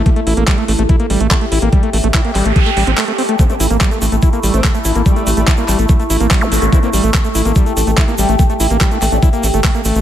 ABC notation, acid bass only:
X:1
M:4/4
L:1/16
Q:1/4=144
K:Cmix
V:1 name="Acid bass"
A, A, E B, G, A, A, A, E B, G, A, A, A, E B, | G, A, A, A, E B, G, A, A, A, G, C A, A, C A, | A, A, E B, G, A, A, A, E B, G, A, z A, E B, | G, A, A, A, E B, G, A, A, A, E B, G, A, A, A, |
E B, G, A, A, A, E B, G, A, A, A, E B, G, A, | A, A, E B, G, A, A, A, E B, A, A, A, B, A, A, |]